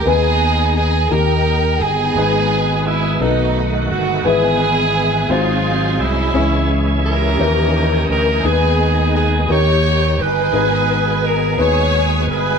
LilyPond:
<<
  \new Staff \with { instrumentName = "Alto saxophone" } { \time 6/8 \key gis \minor \tempo 4. = 57 gis'4 gis'8 ais'4 gis'8~ | gis'4 e'8 dis'8 r8 fis'8 | gis'4. eis'4 e'8~ | e'8 r8 ais'4. ais'8 |
gis'4 gis'8 cis''4 b'8~ | b'4 ais'8 cis''8 r8 b'8 | }
  \new Staff \with { instrumentName = "String section" } { \time 6/8 \key gis \minor << { gis'4 gis'8 ais'4 gis'8~ | gis'4 e'8 dis'4 fis'8 | gis'4. eis'4 e'8~ | e'8 r8 ais'4. ais'8 |
gis'4 gis'8 cis''4 b'8~ | b'4 ais'8 cis''4 b'8 | } \\ { <b dis'>4. <dis' g''>4 <b dis'>8~ | <b dis'>4 r8 <fis a>4. | <b e'>4. bis4 <gis cis'>8~ | <gis cis'>4 <cis' g'>4. r8 |
<b dis'>4. g'4 <dis' gis'>8~ | <dis' gis'>4 r8 gis'4 <e' gis'>8 | } >> }
  \new Staff \with { instrumentName = "Upright piano" } { \time 6/8 \key gis \minor <b dis' gis' b'>4 r8 <ais dis' g' ais'>4 r8 | <b dis' gis' b'>4 r8 <b dis' fis' a'>4 r8 | <b e' gis' b'>4 r8 <fis dis' gis' bis'>4 r8 | <cis' e' gis' cis''>4 r8 <dis' e' g' cis''>4 r8 |
<b dis' gis' ais' b'>4 r8 <ais dis' g' ais'>4 r8 | <b dis' gis' b'>4 r8 <b dis' gis' b'>4 r8 | }
  \new Staff \with { instrumentName = "Upright piano" } { \clef bass \time 6/8 \key gis \minor dis4. dis4. | gis,4. b,4. | gis,4. gis,4. | cis4. e4. |
dis4. dis4. | gis,4. r4. | }
  \new Staff \with { instrumentName = "Tonewheel organ" } { \time 6/8 \key gis \minor r2. | <b, gis b gis'>4. <cis dis a b fis'>4. | <e gis b gis'>4. <fis gis gis' bis'>4. | <e gis cis' e'>4. <e cis' g' dis''>4. |
<dis gis b gis'>4. <dis g''>4. | <b, gis b gis'>2. | }
  \new Staff \with { instrumentName = "Fingered electric bass" } { \clef bass \time 6/8 \key gis \minor dis,4. dis,4 g,,8 | gis,,4. b,,4 g,,8 | gis,,4. gis,,4 bis,,8 | cis,4. dis,4 d,8 |
dis,4. dis,4 g,,8 | gis,,4. dis,4 g,,8 | }
>>